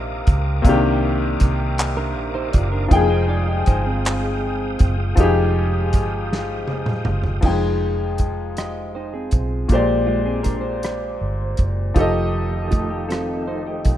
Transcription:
0.00 0.23 A#1 medium
0.00 0.59 C3 medium
0.00 0.60 A#3 medium
0.00 0.61 D4 medium
0.00 0.62 D#4 medium
0.00 0.63 F4 medium
0.00 2.87 A#4 medium
0.00 2.86 F5 medium
0.00 2.87 D6 medium
0.00 2.86 D#6 medium
0.27 0.61 C#2 medium
0.27 kick loud
0.27 closed hi-hat medium
0.62 1.36 C2 loud
0.62 2.86 C3 medium
0.62 2.86 A#3 medium
0.62 2.87 D4 medium
0.62 kick loud
0.62 closed hi-hat medium
0.67 2.88 D#3 medium
0.67 2.89 G4 medium
1.40 2.17 C2 medium
1.40 kick medium
1.40 closed hi-hat medium
1.78 clap loud
1.78 closed hi-hat medium
1.97 2.33 D4 medium
1.97 2.33 A#4 medium
2.17 2.50 A#1 medium
2.35 2.52 D#4 medium
2.35 2.52 C5 medium
2.53 2.88 F#1 medium
2.53 2.72 F4 medium
2.53 2.71 D5 medium
2.53 kick loud
2.53 closed hi-hat medium
2.72 3.08 D4 medium
2.72 3.08 A#4 medium
2.88 3.63 F1 loud
2.88 5.12 F3 medium
2.88 3.09 A#3 medium
2.88 5.13 D#4 medium
2.88 3.09 G4 medium
2.88 7.40 D#6 medium
2.88 kick loud
2.88 closed hi-hat medium
2.93 7.40 G#3 medium
2.93 5.15 G#4 medium
2.93 7.40 F5 medium
2.93 5.16 G5 medium
2.93 5.14 G5 medium
3.09 3.28 D#4 medium
3.09 3.27 C5 medium
3.29 3.47 F4 medium
3.29 3.47 D5 medium
3.48 3.66 G4 medium
3.48 3.65 D#5 medium
3.66 4.76 G1 medium
3.66 3.85 D#4 medium
3.66 3.85 C5 medium
3.66 kick loud
3.66 closed hi-hat medium
3.87 4.95 C4 medium
3.87 4.95 G#4 medium
4.05 clap loud
4.05 closed hi-hat medium
4.79 5.14 F#1 medium
4.79 kick loud
4.79 closed hi-hat medium
5.16 5.94 F1 loud
5.16 7.39 F3 medium
5.16 7.40 D#4 medium
5.16 7.42 G5 medium
5.16 kick loud
5.16 closed hi-hat medium
5.20 7.41 G4 medium
5.20 7.42 G#4 medium
5.93 6.69 G1 medium
5.93 kick medium
5.93 closed hi-hat medium
6.33 snare medium
6.68 7.02 F1 medium
6.68 high tom medium
6.86 mid tom medium
7.05 7.41 F#1 medium
7.05 mid tom loud
7.23 floor tom medium
7.41 9.28 F1 medium
7.41 9.65 F3 medium
7.41 9.66 D#4 medium
7.41 kick loud
7.41 crash medium
7.46 9.68 G#3 medium
7.46 9.67 G5 medium
8.18 kick medium
8.18 closed hi-hat medium
8.57 8.93 G4 soft
8.57 8.93 D#5 medium
8.57 cross-stick loud
8.57 closed hi-hat medium
8.95 9.13 D#4 medium
8.95 9.13 C5 medium
9.14 9.68 C4 medium
9.14 9.67 G#4 medium
9.31 9.67 B1 medium
9.31 kick medium
9.31 closed hi-hat medium
9.68 11.17 A#1 medium
9.68 11.91 A#2 medium
9.68 11.92 G#3 medium
9.68 11.93 G4 medium
9.68 kick loud
9.68 closed hi-hat medium
9.73 11.94 C5 medium
9.73 11.95 D5 medium
10.07 10.26 G#3 medium
10.07 10.25 F4 medium
10.25 10.44 C4 medium
10.25 10.44 G#4 medium
10.43 10.63 D4 medium
10.43 10.61 A#4 medium
10.43 kick medium
10.43 closed hi-hat medium
10.61 11.72 C5 medium
10.83 cross-stick loud
10.83 closed hi-hat medium
11.21 11.55 G1 medium
11.57 11.93 F#1 medium
11.57 kick medium
11.57 closed hi-hat medium
11.94 13.81 F1 medium
11.94 13.97 D#3 medium
11.94 13.97 F3 medium
11.94 13.97 A3 medium
11.94 13.97 D#4 medium
11.94 13.97 G4 medium
11.94 kick loud
11.94 closed hi-hat medium
11.99 13.97 A4 medium
11.99 13.97 D#5 medium
12.71 12.90 A3 medium
12.71 12.89 F4 medium
12.71 kick medium
12.71 closed hi-hat medium
12.90 13.08 G4 medium
13.09 13.45 C4 medium
13.09 13.45 A4 medium
13.09 cross-stick loud
13.09 closed hi-hat medium
13.48 13.66 D#4 medium
13.48 13.65 C5 medium
13.67 13.97 G4 medium
13.67 13.97 D#5 medium
13.85 13.97 B1 loud
13.85 kick medium
13.85 closed hi-hat medium

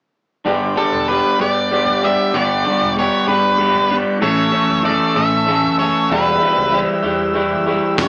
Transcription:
0.45 0.72 G1 medium
0.45 2.33 G2 medium
0.45 1.08 D3 medium
0.45 0.78 G3 medium
0.45 0.77 B3 medium
0.45 0.76 D4 medium
0.45 4.19 D4 medium
0.45 0.75 G4 medium
0.45 4.18 G5 medium
0.45 4.18 B5 medium
0.45 2.32 D6 medium
0.76 1.07 G3 soft
0.76 1.08 B3 medium
0.76 1.10 D4 medium
0.76 1.10 G4 medium
0.76 1.07 A4 medium
0.92 1.19 E1 medium
1.08 1.40 G3 medium
1.08 1.40 B3 medium
1.08 1.39 D4 medium
1.08 1.38 G4 medium
1.08 1.41 B4 medium
1.39 1.88 G2 medium
1.39 1.70 G3 soft
1.39 1.71 B3 medium
1.39 1.72 D4 soft
1.39 1.72 G4 medium
1.39 2.05 D5 medium
1.71 2.05 G3 medium
1.71 2.04 B3 medium
1.71 2.03 D4 medium
1.71 2.02 G4 medium
1.86 2.13 G1 medium
2.03 2.33 G3 soft
2.03 2.34 B3 medium
2.03 2.34 D4 medium
2.03 2.34 G4 medium
2.03 2.36 E5 medium
2.32 2.60 G1 medium
2.32 2.96 G2 medium
2.32 2.97 D3 medium
2.32 2.66 G3 medium
2.32 2.66 B3 medium
2.32 2.65 D4 medium
2.32 2.63 G4 medium
2.32 2.93 D5 medium
2.32 4.19 C#6 medium
2.65 2.95 G3 medium
2.65 2.97 B3 medium
2.65 2.98 D4 medium
2.65 2.99 G4 medium
2.81 3.07 E1 medium
2.97 3.29 G3 medium
2.97 3.28 B3 medium
2.97 3.27 D4 medium
2.97 3.26 G4 medium
2.97 3.27 C#5 medium
3.27 3.76 G2 medium
3.27 3.57 G3 medium
3.27 3.58 B3 medium
3.27 3.59 D4 medium
3.27 3.60 G4 medium
3.27 3.95 B4 medium
3.58 3.92 G3 medium
3.58 3.91 B3 medium
3.58 3.90 D4 medium
3.58 3.89 G4 medium
3.74 4.01 G1 medium
3.90 4.21 G3 soft
3.90 4.21 B3 medium
3.90 4.20 D4 medium
3.90 4.20 G4 medium
4.20 4.48 A1 medium
4.20 4.84 A2 medium
4.20 4.82 E3 medium
4.20 4.54 A3 medium
4.20 4.52 C#4 medium
4.20 4.51 A4 medium
4.20 4.81 C#5 medium
4.20 7.94 E5 medium
4.20 6.08 A5 medium
4.20 6.08 C#6 medium
4.20 7.94 E6 medium
4.52 4.83 A3 medium
4.52 4.85 C#4 medium
4.52 4.85 A4 medium
4.69 4.95 F#1 medium
4.83 5.45 E3 medium
4.83 5.16 A3 medium
4.83 5.15 C#4 medium
4.83 5.14 A4 medium
4.83 5.17 D5 medium
5.15 5.65 A2 medium
5.15 5.46 A3 soft
5.15 5.47 C#4 medium
5.15 5.47 A4 medium
5.15 5.75 E5 medium
5.46 6.08 E3 medium
5.46 5.81 A3 medium
5.46 5.79 C#4 medium
5.46 5.78 A4 medium
5.63 5.89 F#1 medium
5.79 6.10 A3 medium
5.79 6.09 C#4 medium
5.79 6.08 A4 medium
5.79 6.08 C#5 medium
6.09 6.36 E1 medium
6.09 6.73 E2 medium
6.09 6.73 B2 medium
6.09 6.43 E3 medium
6.09 6.42 G3 medium
6.09 6.40 E4 medium
6.09 8.08 G4 medium
6.09 6.40 G4 medium
6.09 6.78 B4 medium
6.09 8.08 B5 soft
6.41 6.69 E3 soft
6.41 6.72 G3 medium
6.41 6.71 E4 medium
6.41 6.73 G4 medium
6.57 6.83 C#2 medium
6.71 7.04 E3 medium
6.71 7.04 G3 medium
6.71 7.02 E4 medium
6.71 7.02 G4 medium
7.03 7.52 E2 medium
7.03 7.32 E3 soft
7.03 7.34 G3 medium
7.03 7.34 E4 medium
7.03 7.35 G4 medium
7.33 7.68 E3 medium
7.33 7.67 G3 medium
7.33 7.66 E4 medium
7.33 7.66 G4 medium
7.50 7.77 F#1 medium
7.66 7.97 E3 soft
7.66 7.98 G3 soft
7.66 7.97 E4 medium
7.66 7.99 G4 medium
7.96 8.08 G1 medium
7.96 8.08 G2 medium
7.96 8.08 D3 medium
7.96 8.08 G3 medium
7.96 8.08 B3 medium
7.96 8.08 D4 medium
7.96 8.08 G4 medium
7.96 kick medium
7.96 closed hi-hat medium
8.01 8.08 C#5 medium

